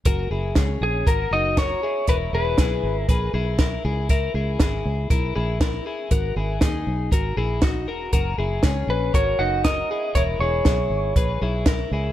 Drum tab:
HH |x-x-x-x-|x-x-x-x-|x-x-x-x-|x-x-x-x-|
SD |--o---o-|--o---o-|--o---o-|--o---o-|
BD |o-o-o-o-|o-o-o-o-|o-o-o-o-|o-o-o-o-|

HH |x-x-x-x-|x-x-x-x-|
SD |--o---o-|--o---o-|
BD |o-o-o-o-|o-o-o-o-|